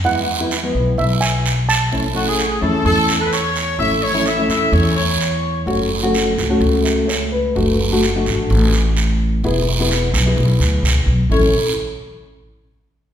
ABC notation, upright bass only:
X:1
M:4/4
L:1/8
Q:1/4=128
K:A
V:1 name="Upright bass" clef=bass
E,,3 B,,, B,,,4 | A,,,3 E,, E,,4 | A,,,3 E,, E,,4 | F,,,3 C,, C,,4 |
F,,,3 A,,, A,,,4 | E,,,3 B,,, B,,, D,, C,, B,,, | A,,, z6 z |]